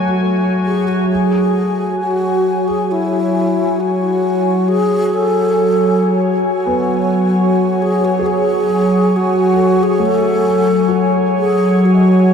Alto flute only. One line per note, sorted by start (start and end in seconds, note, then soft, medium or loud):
0.00 0.17 F#4 loud
0.66 0.89 G#4 medium
0.88 1.09 F#4 medium
1.10 1.95 G#4 medium
2.00 2.69 F#4 medium
2.68 2.93 G#4 medium
2.91 3.82 E4 medium
3.80 4.70 F#4 medium
4.68 5.15 G#4 loud
5.14 6.21 A4 loud
6.47 7.84 F#4 medium
7.82 8.06 G#4 loud
8.05 8.28 F#4 medium
8.26 9.18 G#4 medium
9.16 9.84 F#4 medium
9.83 10.07 G#4 loud
10.05 11.13 A4 loud
11.39 11.87 G#4 loud
11.85 12.34 F#4 medium